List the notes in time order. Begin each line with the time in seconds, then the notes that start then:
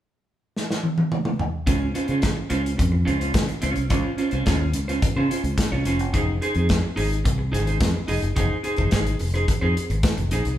0.56 snare
0.71 snare
0.83 high tom
0.98 high tom
1.12 mid tom
1.25 mid tom
1.39 floor tom
1.67 C#2 C#4 F4 C5, kick, closed hi-hat
1.81 muted clean electric guitar stroke
1.94 C#4 F4 C5, closed hi-hat
2.08 C#3 C#4 F4 C5, closed hi-hat
2.22 muted clean electric guitar stroke, kick, snare, closed hi-hat
2.36 muted clean electric guitar stroke
2.50 C#2 C#4 F4 C5, closed hi-hat
2.64 muted clean electric guitar stroke, closed hi-hat
2.77 F2, muted clean electric guitar stroke, kick, closed hi-hat
2.92 muted clean electric guitar stroke
3.05 C#2 C#4 F4 C5, closed hi-hat
3.19 C#4 F4 C5, closed hi-hat
3.34 C#3, muted clean electric guitar stroke, kick, snare, closed hi-hat
3.49 muted clean electric guitar stroke, closed hi-hat
3.62 C#2 C#4 F4 C#5, closed hi-hat
3.76 C2, muted clean electric guitar stroke, closed hi-hat
3.90 C#2 C#4 F4 C5, kick, closed hi-hat
4.18 C#4 F4 C5, closed hi-hat
4.31 C2 C#4 F4 C5, closed hi-hat
4.46 D#2 C#4 F4 C5, kick, snare, closed hi-hat
4.61 muted clean electric guitar stroke
4.73 C#2, muted clean electric guitar stroke, closed hi-hat
4.88 C#4 F4 C5, closed hi-hat
5.02 muted clean electric guitar stroke, muted fingered electric bass stroke, kick, closed hi-hat
5.16 C#3 C#4 F4 C5
5.29 C#4 F4 C5, closed hi-hat
5.44 C#2, muted clean electric guitar stroke, closed hi-hat
5.58 muted clean electric guitar stroke, kick, snare, closed hi-hat
5.72 C2 C#4 F4 C#5
5.85 F1 C#4 F4 C5, closed hi-hat
5.99 F#1, muted clean electric guitar stroke, closed hi-hat
6.13 F1 D#4 G#4 C5, kick, closed hi-hat
6.28 muted clean electric guitar stroke
6.41 D#4 G#4 C5, closed hi-hat
6.55 F2 D#4 G#4 C5, closed hi-hat
6.69 kick, snare, closed hi-hat
6.83 muted clean electric guitar stroke
6.96 G#1 D#4 G#4 C5, open hi-hat
7.10 muted clean electric guitar stroke, closed hi-hat
7.24 C2, muted clean electric guitar stroke, kick, closed hi-hat
7.38 muted clean electric guitar stroke
7.52 G#1 D#4 G#4 C5, snare, closed hi-hat
7.66 D#4 G#4 C5, closed hi-hat
7.80 F2, muted clean electric guitar stroke, kick, snare, closed hi-hat
7.94 muted clean electric guitar stroke
8.08 F1 D#4 G#4 D#5, open hi-hat
8.22 F#1, muted clean electric guitar stroke, closed hi-hat
8.36 F1 D#4 G#4 C5, kick, closed hi-hat
8.63 D#4 G#4 C5, closed hi-hat
8.76 F1 D#4 G#4 C5, kick, closed hi-hat
8.91 D#4 G#4 C5, kick, snare, closed hi-hat
9.05 muted clean electric guitar stroke, closed hi-hat
9.19 F1, muted clean electric guitar stroke, open hi-hat
9.34 D#4 G#4 C5, closed hi-hat
9.48 muted clean electric guitar stroke, muted fingered electric bass stroke, kick, closed hi-hat
9.61 F2 D#4 G#4 C5
9.77 muted clean electric guitar stroke, closed hi-hat
9.90 G#1, muted clean electric guitar stroke, closed hi-hat
10.03 kick, snare, closed hi-hat
10.17 F1, muted clean electric guitar stroke, closed hi-hat
10.31 A#1 D#4 G#4 C5, closed hi-hat
10.45 C2, muted clean electric guitar stroke, closed hi-hat